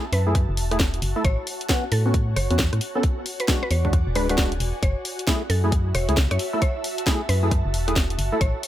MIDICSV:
0, 0, Header, 1, 6, 480
1, 0, Start_track
1, 0, Key_signature, 3, "minor"
1, 0, Tempo, 447761
1, 1334, Time_signature, 4, 2, 24, 8
1, 9297, End_track
2, 0, Start_track
2, 0, Title_t, "Ambient pad"
2, 0, Program_c, 0, 92
2, 0, Note_on_c, 0, 66, 90
2, 0, Note_on_c, 0, 76, 83
2, 0, Note_on_c, 0, 81, 81
2, 1844, Note_on_c, 0, 73, 83
2, 1972, Note_off_c, 0, 76, 0
2, 3253, Note_off_c, 0, 73, 0
2, 3255, Note_off_c, 0, 81, 0
2, 3794, Note_on_c, 0, 74, 87
2, 4142, Note_on_c, 0, 80, 76
2, 5173, Note_off_c, 0, 80, 0
2, 5175, Note_off_c, 0, 74, 0
2, 5681, Note_on_c, 0, 76, 97
2, 6142, Note_on_c, 0, 81, 85
2, 9297, Note_off_c, 0, 66, 0
2, 9297, Note_off_c, 0, 76, 0
2, 9297, Note_off_c, 0, 81, 0
2, 9297, End_track
3, 0, Start_track
3, 0, Title_t, "Synth pluck"
3, 0, Program_c, 1, 84
3, 138, Note_on_c, 1, 71, 93
3, 616, Note_off_c, 1, 71, 0
3, 1338, Note_on_c, 1, 73, 95
3, 1550, Note_off_c, 1, 73, 0
3, 2058, Note_on_c, 1, 69, 92
3, 2270, Note_off_c, 1, 69, 0
3, 2534, Note_on_c, 1, 73, 93
3, 2748, Note_off_c, 1, 73, 0
3, 3646, Note_on_c, 1, 71, 91
3, 3843, Note_off_c, 1, 71, 0
3, 3888, Note_on_c, 1, 71, 95
3, 3958, Note_off_c, 1, 71, 0
3, 3977, Note_on_c, 1, 73, 92
3, 4190, Note_off_c, 1, 73, 0
3, 4458, Note_on_c, 1, 71, 92
3, 4552, Note_off_c, 1, 71, 0
3, 4611, Note_on_c, 1, 71, 77
3, 4665, Note_off_c, 1, 71, 0
3, 5178, Note_on_c, 1, 73, 93
3, 5391, Note_off_c, 1, 73, 0
3, 5893, Note_on_c, 1, 69, 91
3, 6108, Note_off_c, 1, 69, 0
3, 6376, Note_on_c, 1, 73, 95
3, 6589, Note_off_c, 1, 73, 0
3, 6764, Note_on_c, 1, 73, 88
3, 6962, Note_off_c, 1, 73, 0
3, 7095, Note_on_c, 1, 73, 95
3, 7309, Note_off_c, 1, 73, 0
3, 7814, Note_on_c, 1, 71, 90
3, 8294, Note_off_c, 1, 71, 0
3, 9014, Note_on_c, 1, 73, 93
3, 9229, Note_off_c, 1, 73, 0
3, 9297, End_track
4, 0, Start_track
4, 0, Title_t, "Synth stab"
4, 0, Program_c, 2, 62
4, 285, Note_on_c, 2, 64, 75
4, 286, Note_on_c, 2, 57, 83
4, 286, Note_on_c, 2, 68, 89
4, 380, Note_off_c, 2, 57, 0
4, 380, Note_off_c, 2, 64, 0
4, 380, Note_off_c, 2, 68, 0
4, 765, Note_on_c, 2, 57, 87
4, 765, Note_on_c, 2, 64, 76
4, 766, Note_on_c, 2, 68, 92
4, 860, Note_off_c, 2, 57, 0
4, 860, Note_off_c, 2, 64, 0
4, 860, Note_off_c, 2, 68, 0
4, 1244, Note_on_c, 2, 64, 80
4, 1245, Note_on_c, 2, 57, 90
4, 1245, Note_on_c, 2, 69, 100
4, 1323, Note_off_c, 2, 57, 0
4, 1323, Note_off_c, 2, 64, 0
4, 1323, Note_off_c, 2, 69, 0
4, 1813, Note_on_c, 2, 61, 77
4, 1813, Note_on_c, 2, 66, 92
4, 1814, Note_on_c, 2, 59, 80
4, 1968, Note_off_c, 2, 59, 0
4, 1968, Note_off_c, 2, 61, 0
4, 1968, Note_off_c, 2, 66, 0
4, 2205, Note_on_c, 2, 66, 92
4, 2206, Note_on_c, 2, 59, 83
4, 2206, Note_on_c, 2, 61, 77
4, 2300, Note_off_c, 2, 59, 0
4, 2300, Note_off_c, 2, 61, 0
4, 2300, Note_off_c, 2, 66, 0
4, 2685, Note_on_c, 2, 59, 84
4, 2686, Note_on_c, 2, 61, 79
4, 2686, Note_on_c, 2, 66, 94
4, 2780, Note_off_c, 2, 59, 0
4, 2780, Note_off_c, 2, 61, 0
4, 2780, Note_off_c, 2, 66, 0
4, 3167, Note_on_c, 2, 61, 81
4, 3167, Note_on_c, 2, 69, 101
4, 3168, Note_on_c, 2, 59, 91
4, 3244, Note_off_c, 2, 61, 0
4, 3244, Note_off_c, 2, 69, 0
4, 3245, Note_off_c, 2, 59, 0
4, 3735, Note_on_c, 2, 56, 81
4, 3736, Note_on_c, 2, 62, 76
4, 3736, Note_on_c, 2, 66, 93
4, 3888, Note_off_c, 2, 56, 0
4, 3889, Note_off_c, 2, 62, 0
4, 3889, Note_off_c, 2, 66, 0
4, 4127, Note_on_c, 2, 56, 82
4, 4127, Note_on_c, 2, 66, 91
4, 4128, Note_on_c, 2, 62, 77
4, 4221, Note_off_c, 2, 56, 0
4, 4221, Note_off_c, 2, 62, 0
4, 4221, Note_off_c, 2, 66, 0
4, 4454, Note_on_c, 2, 71, 104
4, 4455, Note_on_c, 2, 56, 95
4, 4455, Note_on_c, 2, 62, 84
4, 4582, Note_off_c, 2, 71, 0
4, 4583, Note_off_c, 2, 56, 0
4, 4583, Note_off_c, 2, 62, 0
4, 4606, Note_on_c, 2, 62, 90
4, 4606, Note_on_c, 2, 66, 110
4, 4607, Note_on_c, 2, 56, 101
4, 4681, Note_off_c, 2, 62, 0
4, 4681, Note_off_c, 2, 66, 0
4, 4682, Note_off_c, 2, 56, 0
4, 4694, Note_on_c, 2, 66, 99
4, 4695, Note_on_c, 2, 56, 89
4, 4695, Note_on_c, 2, 62, 84
4, 4848, Note_off_c, 2, 66, 0
4, 4849, Note_off_c, 2, 56, 0
4, 4849, Note_off_c, 2, 62, 0
4, 5655, Note_on_c, 2, 57, 84
4, 5655, Note_on_c, 2, 64, 74
4, 5655, Note_on_c, 2, 68, 89
4, 5809, Note_off_c, 2, 57, 0
4, 5809, Note_off_c, 2, 64, 0
4, 5809, Note_off_c, 2, 68, 0
4, 6044, Note_on_c, 2, 64, 75
4, 6044, Note_on_c, 2, 68, 93
4, 6045, Note_on_c, 2, 57, 83
4, 6139, Note_off_c, 2, 64, 0
4, 6139, Note_off_c, 2, 68, 0
4, 6140, Note_off_c, 2, 57, 0
4, 6524, Note_on_c, 2, 64, 77
4, 6524, Note_on_c, 2, 68, 93
4, 6525, Note_on_c, 2, 57, 84
4, 6619, Note_off_c, 2, 64, 0
4, 6619, Note_off_c, 2, 68, 0
4, 6620, Note_off_c, 2, 57, 0
4, 7004, Note_on_c, 2, 57, 91
4, 7004, Note_on_c, 2, 64, 83
4, 7004, Note_on_c, 2, 69, 101
4, 7099, Note_off_c, 2, 57, 0
4, 7099, Note_off_c, 2, 64, 0
4, 7099, Note_off_c, 2, 69, 0
4, 7575, Note_on_c, 2, 57, 82
4, 7575, Note_on_c, 2, 68, 89
4, 7576, Note_on_c, 2, 64, 77
4, 7729, Note_off_c, 2, 57, 0
4, 7729, Note_off_c, 2, 64, 0
4, 7729, Note_off_c, 2, 68, 0
4, 7964, Note_on_c, 2, 57, 83
4, 7964, Note_on_c, 2, 68, 90
4, 7965, Note_on_c, 2, 64, 78
4, 8059, Note_off_c, 2, 68, 0
4, 8060, Note_off_c, 2, 57, 0
4, 8060, Note_off_c, 2, 64, 0
4, 8444, Note_on_c, 2, 57, 84
4, 8445, Note_on_c, 2, 64, 76
4, 8445, Note_on_c, 2, 68, 97
4, 8539, Note_off_c, 2, 57, 0
4, 8540, Note_off_c, 2, 64, 0
4, 8540, Note_off_c, 2, 68, 0
4, 8924, Note_on_c, 2, 57, 91
4, 8924, Note_on_c, 2, 64, 83
4, 8924, Note_on_c, 2, 69, 98
4, 9003, Note_off_c, 2, 57, 0
4, 9003, Note_off_c, 2, 64, 0
4, 9003, Note_off_c, 2, 69, 0
4, 9297, End_track
5, 0, Start_track
5, 0, Title_t, "FM bass"
5, 0, Program_c, 3, 39
5, 134, Note_on_c, 3, 42, 80
5, 495, Note_off_c, 3, 42, 0
5, 526, Note_on_c, 3, 30, 85
5, 615, Note_on_c, 3, 28, 99
5, 631, Note_off_c, 3, 30, 0
5, 1077, Note_off_c, 3, 28, 0
5, 1096, Note_on_c, 3, 30, 85
5, 1227, Note_off_c, 3, 30, 0
5, 1334, Note_on_c, 3, 33, 98
5, 1466, Note_off_c, 3, 33, 0
5, 2057, Note_on_c, 3, 45, 82
5, 2517, Note_off_c, 3, 45, 0
5, 2536, Note_on_c, 3, 30, 96
5, 2667, Note_off_c, 3, 30, 0
5, 2687, Note_on_c, 3, 40, 107
5, 2889, Note_off_c, 3, 40, 0
5, 2927, Note_on_c, 3, 45, 85
5, 3004, Note_off_c, 3, 45, 0
5, 3975, Note_on_c, 3, 40, 82
5, 4335, Note_off_c, 3, 40, 0
5, 4365, Note_on_c, 3, 28, 83
5, 4454, Note_on_c, 3, 26, 102
5, 4471, Note_off_c, 3, 28, 0
5, 4916, Note_off_c, 3, 26, 0
5, 4934, Note_on_c, 3, 28, 84
5, 5066, Note_off_c, 3, 28, 0
5, 5174, Note_on_c, 3, 30, 102
5, 5306, Note_off_c, 3, 30, 0
5, 5894, Note_on_c, 3, 42, 84
5, 6356, Note_off_c, 3, 42, 0
5, 6374, Note_on_c, 3, 28, 96
5, 6506, Note_off_c, 3, 28, 0
5, 6527, Note_on_c, 3, 37, 104
5, 6728, Note_off_c, 3, 37, 0
5, 6766, Note_on_c, 3, 42, 84
5, 6843, Note_off_c, 3, 42, 0
5, 7816, Note_on_c, 3, 42, 83
5, 8176, Note_off_c, 3, 42, 0
5, 8206, Note_on_c, 3, 30, 85
5, 8295, Note_on_c, 3, 28, 101
5, 8311, Note_off_c, 3, 30, 0
5, 8757, Note_off_c, 3, 28, 0
5, 8774, Note_on_c, 3, 30, 82
5, 8906, Note_off_c, 3, 30, 0
5, 9015, Note_on_c, 3, 33, 98
5, 9146, Note_off_c, 3, 33, 0
5, 9297, End_track
6, 0, Start_track
6, 0, Title_t, "Drums"
6, 134, Note_on_c, 9, 46, 107
6, 242, Note_off_c, 9, 46, 0
6, 374, Note_on_c, 9, 36, 125
6, 375, Note_on_c, 9, 37, 61
6, 375, Note_on_c, 9, 42, 65
6, 482, Note_off_c, 9, 36, 0
6, 482, Note_off_c, 9, 37, 0
6, 482, Note_off_c, 9, 42, 0
6, 614, Note_on_c, 9, 46, 106
6, 722, Note_off_c, 9, 46, 0
6, 766, Note_on_c, 9, 37, 59
6, 766, Note_on_c, 9, 42, 63
6, 854, Note_on_c, 9, 36, 123
6, 854, Note_on_c, 9, 38, 125
6, 873, Note_off_c, 9, 37, 0
6, 873, Note_off_c, 9, 42, 0
6, 961, Note_off_c, 9, 38, 0
6, 962, Note_off_c, 9, 36, 0
6, 1005, Note_on_c, 9, 42, 51
6, 1095, Note_on_c, 9, 46, 106
6, 1112, Note_off_c, 9, 42, 0
6, 1202, Note_off_c, 9, 46, 0
6, 1335, Note_on_c, 9, 36, 125
6, 1335, Note_on_c, 9, 42, 64
6, 1442, Note_off_c, 9, 36, 0
6, 1443, Note_off_c, 9, 42, 0
6, 1575, Note_on_c, 9, 46, 104
6, 1682, Note_off_c, 9, 46, 0
6, 1726, Note_on_c, 9, 42, 62
6, 1815, Note_on_c, 9, 36, 127
6, 1815, Note_on_c, 9, 38, 123
6, 1833, Note_off_c, 9, 42, 0
6, 1922, Note_off_c, 9, 36, 0
6, 1922, Note_off_c, 9, 38, 0
6, 2054, Note_on_c, 9, 46, 106
6, 2162, Note_off_c, 9, 46, 0
6, 2294, Note_on_c, 9, 36, 127
6, 2294, Note_on_c, 9, 42, 65
6, 2402, Note_off_c, 9, 36, 0
6, 2402, Note_off_c, 9, 42, 0
6, 2535, Note_on_c, 9, 37, 70
6, 2535, Note_on_c, 9, 46, 103
6, 2643, Note_off_c, 9, 37, 0
6, 2643, Note_off_c, 9, 46, 0
6, 2686, Note_on_c, 9, 42, 63
6, 2774, Note_on_c, 9, 36, 122
6, 2774, Note_on_c, 9, 38, 127
6, 2793, Note_off_c, 9, 42, 0
6, 2882, Note_off_c, 9, 36, 0
6, 2882, Note_off_c, 9, 38, 0
6, 2924, Note_on_c, 9, 37, 70
6, 2924, Note_on_c, 9, 42, 50
6, 3013, Note_on_c, 9, 46, 104
6, 3032, Note_off_c, 9, 37, 0
6, 3032, Note_off_c, 9, 42, 0
6, 3120, Note_off_c, 9, 46, 0
6, 3252, Note_on_c, 9, 42, 65
6, 3254, Note_on_c, 9, 36, 124
6, 3359, Note_off_c, 9, 42, 0
6, 3362, Note_off_c, 9, 36, 0
6, 3492, Note_on_c, 9, 46, 100
6, 3599, Note_off_c, 9, 46, 0
6, 3642, Note_on_c, 9, 42, 65
6, 3733, Note_on_c, 9, 38, 121
6, 3734, Note_on_c, 9, 36, 127
6, 3750, Note_off_c, 9, 42, 0
6, 3840, Note_off_c, 9, 38, 0
6, 3841, Note_off_c, 9, 36, 0
6, 3973, Note_on_c, 9, 46, 102
6, 4080, Note_off_c, 9, 46, 0
6, 4125, Note_on_c, 9, 36, 66
6, 4213, Note_off_c, 9, 36, 0
6, 4213, Note_on_c, 9, 36, 127
6, 4214, Note_on_c, 9, 37, 56
6, 4214, Note_on_c, 9, 42, 67
6, 4320, Note_off_c, 9, 36, 0
6, 4321, Note_off_c, 9, 37, 0
6, 4321, Note_off_c, 9, 42, 0
6, 4454, Note_on_c, 9, 46, 98
6, 4561, Note_off_c, 9, 46, 0
6, 4604, Note_on_c, 9, 37, 55
6, 4604, Note_on_c, 9, 42, 64
6, 4693, Note_on_c, 9, 38, 125
6, 4694, Note_on_c, 9, 36, 123
6, 4711, Note_off_c, 9, 37, 0
6, 4711, Note_off_c, 9, 42, 0
6, 4800, Note_off_c, 9, 38, 0
6, 4801, Note_off_c, 9, 36, 0
6, 4844, Note_on_c, 9, 42, 52
6, 4934, Note_on_c, 9, 46, 105
6, 4951, Note_off_c, 9, 42, 0
6, 5041, Note_off_c, 9, 46, 0
6, 5173, Note_on_c, 9, 36, 117
6, 5174, Note_on_c, 9, 42, 67
6, 5280, Note_off_c, 9, 36, 0
6, 5281, Note_off_c, 9, 42, 0
6, 5414, Note_on_c, 9, 46, 103
6, 5521, Note_off_c, 9, 46, 0
6, 5566, Note_on_c, 9, 42, 67
6, 5653, Note_on_c, 9, 36, 123
6, 5655, Note_on_c, 9, 38, 115
6, 5673, Note_off_c, 9, 42, 0
6, 5760, Note_off_c, 9, 36, 0
6, 5762, Note_off_c, 9, 38, 0
6, 5894, Note_on_c, 9, 46, 99
6, 6001, Note_off_c, 9, 46, 0
6, 6133, Note_on_c, 9, 36, 121
6, 6134, Note_on_c, 9, 42, 70
6, 6240, Note_off_c, 9, 36, 0
6, 6241, Note_off_c, 9, 42, 0
6, 6374, Note_on_c, 9, 37, 65
6, 6374, Note_on_c, 9, 46, 103
6, 6481, Note_off_c, 9, 37, 0
6, 6481, Note_off_c, 9, 46, 0
6, 6525, Note_on_c, 9, 42, 67
6, 6614, Note_on_c, 9, 36, 122
6, 6614, Note_on_c, 9, 38, 121
6, 6632, Note_off_c, 9, 42, 0
6, 6721, Note_off_c, 9, 36, 0
6, 6721, Note_off_c, 9, 38, 0
6, 6766, Note_on_c, 9, 37, 64
6, 6766, Note_on_c, 9, 42, 55
6, 6854, Note_on_c, 9, 46, 102
6, 6873, Note_off_c, 9, 37, 0
6, 6873, Note_off_c, 9, 42, 0
6, 6961, Note_off_c, 9, 46, 0
6, 7094, Note_on_c, 9, 36, 116
6, 7094, Note_on_c, 9, 42, 70
6, 7201, Note_off_c, 9, 36, 0
6, 7201, Note_off_c, 9, 42, 0
6, 7335, Note_on_c, 9, 46, 106
6, 7442, Note_off_c, 9, 46, 0
6, 7485, Note_on_c, 9, 42, 70
6, 7574, Note_on_c, 9, 36, 118
6, 7576, Note_on_c, 9, 38, 113
6, 7593, Note_off_c, 9, 42, 0
6, 7681, Note_off_c, 9, 36, 0
6, 7683, Note_off_c, 9, 38, 0
6, 7815, Note_on_c, 9, 46, 103
6, 7923, Note_off_c, 9, 46, 0
6, 8054, Note_on_c, 9, 36, 120
6, 8056, Note_on_c, 9, 37, 56
6, 8056, Note_on_c, 9, 42, 71
6, 8161, Note_off_c, 9, 36, 0
6, 8163, Note_off_c, 9, 37, 0
6, 8163, Note_off_c, 9, 42, 0
6, 8296, Note_on_c, 9, 46, 106
6, 8403, Note_off_c, 9, 46, 0
6, 8447, Note_on_c, 9, 37, 55
6, 8447, Note_on_c, 9, 42, 70
6, 8534, Note_on_c, 9, 36, 117
6, 8535, Note_on_c, 9, 38, 115
6, 8554, Note_off_c, 9, 37, 0
6, 8554, Note_off_c, 9, 42, 0
6, 8641, Note_off_c, 9, 36, 0
6, 8643, Note_off_c, 9, 38, 0
6, 8687, Note_on_c, 9, 42, 54
6, 8776, Note_on_c, 9, 46, 106
6, 8794, Note_off_c, 9, 42, 0
6, 8883, Note_off_c, 9, 46, 0
6, 9015, Note_on_c, 9, 36, 111
6, 9015, Note_on_c, 9, 42, 69
6, 9122, Note_off_c, 9, 36, 0
6, 9122, Note_off_c, 9, 42, 0
6, 9254, Note_on_c, 9, 46, 110
6, 9297, Note_off_c, 9, 46, 0
6, 9297, End_track
0, 0, End_of_file